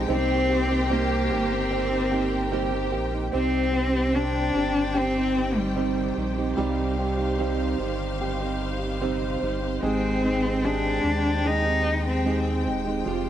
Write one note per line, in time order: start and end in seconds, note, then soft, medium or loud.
0.00 3.29 D#3 medium
0.00 0.11 G#3 medium
0.00 3.29 C5 medium
0.00 3.29 G5 medium
0.08 1.32 C2 loud
0.08 0.69 C3 medium
0.08 0.69 G3 medium
0.08 0.70 A#3 medium
0.08 0.88 C4 medium
0.08 0.93 C4 loud
0.08 0.69 D#4 medium
0.08 2.48 G4 loud
0.08 0.67 G4 medium
0.08 3.30 A#4 medium
0.49 1.29 G4 medium
0.68 0.89 A#3 soft
0.68 0.89 D#4 soft
0.68 0.89 G4 soft
0.89 1.10 C3 medium
0.89 1.10 G3 medium
0.89 1.10 A#3 medium
0.89 1.54 A#3 medium
0.89 1.69 C4 medium
0.89 1.09 D#4 medium
0.89 1.08 G4 medium
1.09 1.29 A#3 soft
1.09 1.31 D#4 soft
1.09 1.30 G4 medium
1.29 2.94 G1 medium
1.29 1.91 G3 medium
1.29 1.91 A#3 medium
1.29 1.90 D#4 medium
1.29 2.09 G4 medium
1.29 1.88 G4 medium
1.53 2.53 C4 medium
1.70 2.50 C4 medium
1.89 2.10 A#3 soft
1.89 2.11 D#4 soft
1.89 2.11 G4 medium
2.10 2.51 G3 medium
2.10 2.51 A#3 medium
2.10 2.52 D#4 medium
2.10 2.90 G4 medium
2.10 2.52 G4 medium
2.51 2.72 C3 medium
2.51 2.72 G3 medium
2.51 2.72 A#3 medium
2.51 3.31 C4 medium
2.51 2.72 D#4 medium
2.51 3.29 G4 medium
2.51 2.70 G4 medium
2.71 3.14 A#3 soft
2.71 3.13 D#4 medium
2.71 3.11 G4 medium
2.92 3.30 A#1 medium
2.92 3.32 G4 medium
3.12 3.33 A#3 soft
3.12 3.33 D#4 medium
3.12 3.33 G4 medium
3.32 4.51 C2 loud
3.32 3.73 C3 medium
3.32 13.02 D#3 medium
3.32 3.71 G3 medium
3.32 4.12 C4 medium
3.32 3.73 C4 medium
3.32 4.16 C4 loud
3.32 3.74 D#4 medium
3.32 9.77 G4 medium
3.32 3.74 G4 medium
3.32 13.02 C5 medium
3.32 6.54 G5 medium
3.72 3.93 G3 medium
3.72 3.94 C4 medium
3.72 3.94 D#4 medium
3.72 4.93 G4 soft
3.72 3.92 G4 medium
3.93 4.14 C4 soft
3.93 4.15 D#4 soft
3.93 4.14 G4 soft
4.14 4.54 C3 medium
4.14 4.52 G3 medium
4.14 5.72 C4 medium
4.14 4.54 C4 medium
4.14 4.98 D4 loud
4.14 4.56 G4 medium
4.54 6.13 G1 medium
4.54 5.15 G3 medium
4.54 5.16 C4 medium
4.54 5.13 G4 medium
4.94 5.60 C4 loud
4.94 6.53 G4 medium
5.15 5.57 C4 soft
5.15 5.55 D#4 soft
5.15 5.54 G4 soft
5.55 6.18 G3 medium
5.55 5.75 C4 soft
5.55 5.76 D#4 soft
5.55 5.76 G4 soft
5.75 6.16 C3 medium
5.75 6.15 G3 medium
5.75 7.34 C4 medium
5.75 6.16 C4 medium
5.75 6.17 D#4 medium
5.75 6.18 G4 medium
6.16 6.55 A#1 medium
6.16 6.37 G3 medium
6.16 6.37 C4 medium
6.16 6.36 D#4 medium
6.16 6.35 G4 medium
6.36 6.56 C4 soft
6.36 6.57 D#4 soft
6.36 6.57 G4 medium
6.56 7.75 C2 loud
6.56 6.97 C3 medium
6.56 9.77 G3 medium
6.56 6.96 G3 medium
6.56 6.97 C4 medium
6.56 6.98 D#4 medium
6.56 6.99 G4 medium
6.56 9.78 F5 medium
6.97 7.18 G3 medium
6.97 7.18 C4 medium
6.97 7.18 D#4 medium
6.97 8.19 G4 medium
6.97 7.16 G4 medium
7.17 7.38 C4 soft
7.17 7.38 D#4 medium
7.17 7.38 G4 soft
7.38 7.79 C3 medium
7.38 7.77 G3 medium
7.38 8.97 C4 medium
7.38 7.78 C4 medium
7.38 7.80 D#4 medium
7.38 7.80 G4 medium
7.78 9.37 G1 medium
7.78 8.18 G3 medium
7.78 8.19 C4 medium
7.78 8.20 D#4 medium
7.78 8.21 G4 medium
8.19 8.40 G3 medium
8.19 8.40 C4 medium
8.19 8.40 D#4 medium
8.19 9.78 G4 medium
8.19 8.38 G4 medium
8.39 8.82 C4 soft
8.39 8.80 D#4 medium
8.39 8.78 G4 medium
8.80 9.00 C4 soft
8.80 9.01 D#4 soft
8.80 9.00 G4 soft
9.00 9.41 C3 medium
9.00 9.40 G3 medium
9.00 9.80 C4 medium
9.00 9.41 C4 medium
9.00 9.42 D#4 medium
9.00 9.42 G4 medium
9.41 9.79 G1 medium
9.41 9.61 G3 medium
9.41 9.62 C4 medium
9.41 9.61 D#4 medium
9.41 9.59 G4 medium
9.61 9.81 C4 soft
9.61 9.82 D#4 soft
9.61 9.81 G4 medium
9.82 11.00 G#1 loud
9.82 10.21 G#3 medium
9.82 10.22 G#3 medium
9.82 13.29 G#3 medium
9.82 10.22 C4 medium
9.82 10.66 C4 medium
9.82 10.23 D#4 medium
9.82 10.23 G4 medium
9.82 13.29 G5 medium
10.22 10.42 G#3 medium
10.22 10.63 G#3 soft
10.22 10.43 C4 medium
10.22 10.43 D#4 medium
10.22 10.41 G4 medium
10.43 10.62 C4 soft
10.43 10.64 D#4 soft
10.43 10.63 G4 soft
10.63 11.02 G#3 medium
10.63 11.43 G#3 medium
10.63 11.03 C4 medium
10.63 11.48 D4 medium
10.63 11.04 G4 medium
11.03 12.67 D#2 medium
11.03 11.42 G#3 medium
11.03 11.44 C4 medium
11.03 11.45 G4 medium
11.44 11.64 G#3 medium
11.44 12.24 G#3 medium
11.44 11.65 C4 soft
11.44 11.64 D#4 medium
11.44 12.06 D#4 loud
11.44 11.62 G4 medium
11.64 12.24 C4 soft
11.64 12.25 D#4 soft
11.64 12.25 G4 medium
12.08 12.63 C4 medium
12.24 12.63 G#3 medium
12.24 13.04 G#3 medium
12.24 12.64 C4 medium
12.24 12.66 D#4 medium
12.24 12.66 G4 medium
12.64 13.03 D#1 medium
12.64 12.85 G#3 soft
12.64 12.86 C4 medium
12.64 12.86 D#4 medium
12.64 12.84 G4 medium
12.85 13.05 C4 soft
12.85 13.07 D#4 medium
12.85 13.06 G4 medium
13.05 13.29 F1 loud
13.05 13.29 F3 medium
13.05 13.29 G#3 medium
13.05 13.29 C4 medium
13.05 13.29 F4 medium
13.05 13.29 G4 medium
13.05 13.29 C5 medium